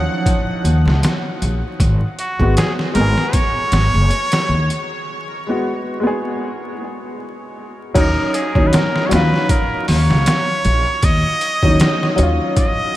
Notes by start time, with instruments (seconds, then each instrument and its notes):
Already playing: upright piano F3 F#3 C#4 D#4, muted trumpet F#5
0.26 kick, closed hi-hat
0.64 upright bass D#2, closed hi-hat
0.85 upright bass C#2, snare
1.03 snare, closed hi-hat
1.42 upright bass A#1, closed hi-hat
1.80 upright bass G#1, kick, closed hi-hat
2.19 muted trumpet F#4, closed hi-hat
2.39 upright bass G#1, upright piano G#3 B3 F#4, kick
2.57 muted trumpet G#4, snare, closed hi-hat
2.79 snare
2.93 upright bass G#1, upright piano G#3 B3, muted trumpet A#4, closed hi-hat
3.01 upright piano G#4
3.18 snare
3.33 muted trumpet C#5, kick, closed hi-hat
3.72 upright bass G#1, snare, closed hi-hat
3.94 upright bass F#1
4.11 closed hi-hat
4.32 snare, closed hi-hat
4.49 upright bass D#2
4.70 closed hi-hat
4.82 muted trumpet C#5
5.47 upright piano G#3 B3 F#4
6.00 upright piano G#3 B3
6.07 upright piano G#4
7.94 upright bass D#2, upright piano F#3 C#4 D#4, muted trumpet A#4, kick, closed hi-hat, crash
8.34 muted trumpet G#4, closed hi-hat
8.55 upright bass D#2, upright piano F#3 C#4 D#4, kick
8.67 muted trumpet B4
8.73 muted trumpet A#4, snare, closed hi-hat
8.96 snare
9.06 upright piano F#3, muted trumpet C#5
9.11 upright bass D#2, upright piano C#4, muted trumpet B4, snare, closed hi-hat
9.15 upright piano F4
9.34 snare
9.49 muted trumpet A#4, kick, closed hi-hat
9.88 upright bass D#2, muted trumpet C#5, snare, open hi-hat
10.10 upright bass C#2, snare
10.26 snare, closed hi-hat
10.65 upright bass A#1, closed hi-hat
11.02 upright bass D#2, muted trumpet D#5, kick, closed hi-hat
11.41 closed hi-hat
11.63 upright bass D#2, upright piano F#3 C#4 D#4, kick
11.80 snare, closed hi-hat
12.03 snare
12.16 upright bass D#2, upright piano F#3 C#4, closed hi-hat
12.23 upright piano F4
12.56 muted trumpet D#5, kick, closed hi-hat